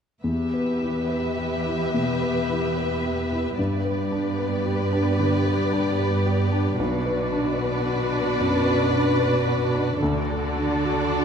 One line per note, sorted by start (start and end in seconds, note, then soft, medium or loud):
0.24 1.90 E2 soft
0.24 3.55 E2 soft
0.24 3.54 B3 soft
0.24 3.54 G4 soft
0.24 3.54 B4 soft
0.24 3.54 E5 soft
0.54 0.98 B4 soft
0.82 1.27 E4 soft
1.09 1.54 B4 soft
1.38 1.83 G4 soft
1.66 2.10 E4 soft
1.94 2.38 B2 soft
2.22 2.65 B4 soft
2.50 2.93 E4 soft
2.78 3.21 B4 soft
3.05 3.48 G4 soft
3.32 3.59 E4 soft
3.58 6.75 G2 soft
3.58 5.15 G2 soft
3.58 6.75 B3 soft
3.58 6.75 G4 soft
3.58 6.75 B4 soft
3.58 6.75 D5 soft
3.85 4.27 B4 soft
4.12 4.54 D4 soft
4.39 4.81 B4 soft
4.66 5.09 G4 soft
4.92 5.36 D4 soft
5.19 5.62 D3 soft
5.47 5.89 B4 soft
5.73 6.15 D4 soft
6.00 6.42 B4 soft
6.26 6.68 G4 soft
6.52 6.79 D4 soft
6.77 8.35 B1 soft
6.77 9.97 B2 soft
6.77 9.96 D4 soft
6.77 9.96 F#4 soft
6.77 9.97 B4 medium
6.77 9.96 D5 medium
7.06 7.48 B4 soft
7.32 7.75 D4 soft
7.58 8.01 B4 soft
7.86 8.28 F#4 soft
8.13 8.55 D4 soft
8.41 8.82 F#2 soft
8.66 9.09 B4 soft
8.94 9.36 D4 soft
9.20 9.63 B4 soft
9.47 9.90 F#4 soft
9.74 10.01 D4 soft
10.00 11.25 D2 soft
10.00 11.25 D3 soft
10.00 11.25 D4 medium
10.00 11.25 F#4 soft
10.00 11.25 A4 medium
10.00 11.25 D5 medium
10.31 10.73 A4 soft
10.56 10.99 D4 soft
10.84 11.25 A4 soft
11.12 11.25 F#4 soft